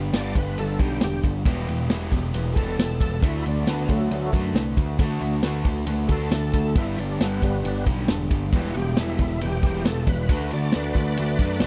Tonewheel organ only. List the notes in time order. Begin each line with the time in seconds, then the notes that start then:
0.16 D5
0.38 B4
0.59 A4
0.81 G4
1.04 G4
2.53 G#4 A4
3.24 E4
3.48 D4
3.70 B3
3.90 F#3 A3
6.08 G#4
6.12 A4
6.78 E4
7.00 D4
7.22 B3
7.44 G3 B3
8.73 F#4
8.77 G4
8.99 E4
9.43 G4
9.88 A4
10.09 B4
10.53 D5
10.75 B4 D5